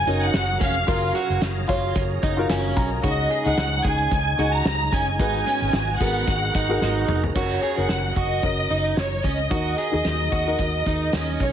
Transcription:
Already playing: F#3 C#4 F4 F#4 G#4 A#4 C#5 G#5 A#5
0.07 F#1 C#4 D#4 F#4 A#4, closed hi-hat, shaker
0.21 F#5, shaker
0.34 F#1, snare, closed hi-hat, shaker
0.48 shaker
0.61 F1 C#4 F5, kick, closed hi-hat, shaker
0.75 shaker
0.87 F#1 F4 F#4 A#4, kick, closed hi-hat, shaker
1.03 shaker
1.15 F#4, closed hi-hat
1.30 F#1, closed hi-hat, shaker
1.42 F#1, snare, closed hi-hat, shaker
1.56 shaker
1.68 F#1 F4 F#4 C#5, kick, snare, closed hi-hat, shaker
1.84 shaker
1.95 F#1, kick, closed hi-hat, shaker
2.11 shaker
2.22 F#1 D#4 D#5, kick, closed hi-hat, shaker
2.37 F4 F#4 A#4 F5, shaker
2.50 F#1 C#4 G#5, snare, closed hi-hat, shaker
2.65 shaker
2.77 B1 A#5, kick, closed hi-hat, shaker
2.91 shaker
3.03 C#2 C#3 G#3 D#4 F#4 G#4 C#5 D#5, kick, closed hi-hat, shaker
3.19 shaker
3.30 G#4, closed hi-hat
3.45 C#2 D#4 G#4 D#5 F#5, closed hi-hat, shaker
3.57 C#2, snare, closed hi-hat, shaker
3.72 shaker
3.84 C#2 G#4 G#5, kick, closed hi-hat, shaker
4.00 shaker
4.11 C#2, kick, closed hi-hat, shaker
4.27 shaker
4.38 C#2 D#4 F#4 G#4 D#5, closed hi-hat, shaker
4.54 A#5, shaker
4.65 C#2, snare, closed hi-hat, shaker
4.81 shaker
4.93 F#1 C#4 G#5, kick, closed hi-hat, shaker
5.07 shaker
5.19 G#1 G#2 B3 D#4 F#4 G#4 B4 G#5 A#5, kick, closed hi-hat, shaker
5.34 closed hi-hat, shaker
5.46 C#4, closed hi-hat, shaker
5.61 G#1, shaker
5.73 G#1, snare, closed hi-hat, shaker
5.88 shaker
6.00 G#1 B3 F#4 G#4 A#4 F#5, kick, closed hi-hat, shaker
6.16 shaker
6.27 G#1, kick, closed hi-hat, shaker
6.43 shaker
6.55 G#1 D#4, kick, closed hi-hat, shaker
6.69 F#4 G#4 A#4, shaker
6.82 G#1 D#4, snare, shaker
6.97 shaker
7.08 F1, mid tom, shaker
7.23 floor tom, shaker
7.35 F#1 C#4 F#4 A#4 C#5, kick, crash
7.63 G#4
7.76 F#1 C#4 F#4 A#4 F#5
7.89 F#1, snare
8.16 F#1 F#4 D#5, kick
8.42 F#1 C#4 F#4 A#4, kick
8.70 F#1 D#4
8.97 F#1 C#5, snare
9.24 C#2 C#4 D#5, kick
9.50 D#2 D#3 D#4 F#4 A#4, kick, closed hi-hat
9.78 G#4, closed hi-hat
9.91 D#2 D#4 F#4 G#4
10.05 D#2, snare, closed hi-hat
10.32 D#2 F#4, kick, closed hi-hat
10.46 D#4 F#4 A#4
10.58 D#2, kick, closed hi-hat
10.86 D#2 D#4, kick, closed hi-hat
11.13 D#2 C#4, snare, closed hi-hat
11.40 B1 C#5, kick, closed hi-hat

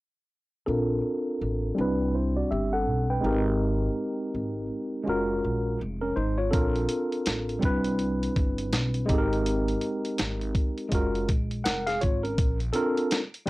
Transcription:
0.66 A#1 C4 D4 F4 A4 A#4
1.41 A1
1.75 C2 G3 C4 D4
1.79 E4 B4
2.14 E4 C5
2.37 F#4 D5
2.51 G1 G4 E5
2.73 A4 F#5
2.89 B1
3.10 B4 G5
3.21 G#1 G#3 C4 D#4
3.25 G4 A#4
4.35 G#1
5.04 F#1 G#3 C#4 F4
5.08 F#4 A#4
5.44 A#1
5.81 F1
6.01 C#4 A#4
6.16 G#1 D#4 C5
6.38 F4 C#5
6.51 A#1 C4 D4 F4 A4 A#4, kick, closed hi-hat
6.76 closed hi-hat
6.89 closed hi-hat
7.12 closed hi-hat
7.26 A1, snare, closed hi-hat
7.49 closed hi-hat
7.59 G3 C4 D4, kick, closed hi-hat
7.63 C2 E4 B4
7.84 closed hi-hat
7.99 closed hi-hat
8.23 closed hi-hat
8.36 G1, kick, closed hi-hat
8.58 closed hi-hat
8.73 B1, snare, closed hi-hat
8.94 closed hi-hat
9.06 G#1 G#3 C4 D#4, kick, closed hi-hat
9.10 G4 A4
9.18 A#4
9.33 closed hi-hat
9.46 closed hi-hat
9.68 closed hi-hat
9.81 closed hi-hat
10.05 closed hi-hat
10.18 G#1, snare, closed hi-hat
10.41 closed hi-hat
10.55 kick, closed hi-hat
10.78 closed hi-hat
10.89 F#1 G#3 C#4 F4, kick, closed hi-hat
10.93 F#4 A#4
11.15 closed hi-hat
11.29 A#1, kick, closed hi-hat
11.51 closed hi-hat
11.64 F1 A#4 F#5, snare, closed hi-hat
11.87 G#4 F5, snare, closed hi-hat
12.01 G#1 F4 C#5, kick, closed hi-hat
12.23 C#4 A#4, closed hi-hat
12.38 A#1, kick, closed hi-hat
12.60 closed hi-hat
12.73 C4 D4 F4 A4 A#4, closed hi-hat
12.97 closed hi-hat
13.11 snare, closed hi-hat
13.34 closed hi-hat
13.46 G3 C4

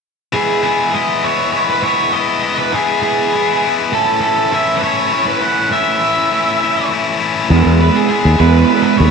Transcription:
0.33 E3 G#3 B3 E4 G#4
0.62 G#3 B3 E4 G#4
0.93 E3 G#3 B3 E4 D#5
1.23 G#3 B3 E4 C#5
1.52 E3 G#3 B3 E4
1.70 B4
1.83 G#3 B3 E4 C#5
2.13 E3 G#3 B3 E4 D#5
2.43 G#3 B3 E4
2.57 B4
2.72 E3 G#3 B3 E4 G#4
3.02 G#3 B3 E4 G#4
3.33 E3 G#3 B3 E4
3.63 G#3 B3 E4
3.92 A2 E3 A3 C#4 E4 A4
4.21 A3 C#4 E4 A4
4.50 E3 A3 C#4 E4 E5
4.77 B4
4.81 A3 C#4 E4 C#5
5.11 E3 A3 C#4 E4
5.27 B4
5.41 A3 C#4 E4 F#5
5.71 A2 E3 A3 C#4 E4 E5
6.00 A3 C#4 E4
6.30 E3 A3 C#4 E4
6.61 A3 C#4 E4
6.90 E3 A3 C#4 E4
7.20 A3 C#4 E4
7.50 E2 E3 G#3 B3 E4
7.66 E2
7.80 E3 G#3 B3 E4 B4
7.96 G#4
8.10 E3 G#3 B3 E4 G#4
8.25 D#2
8.39 E2 E3 G#3 B3 E4 B4
8.69 E3 G#3 B3 E4
8.82 A4 B4
8.97 D#2 E3 G#3 B3 E4 C#5

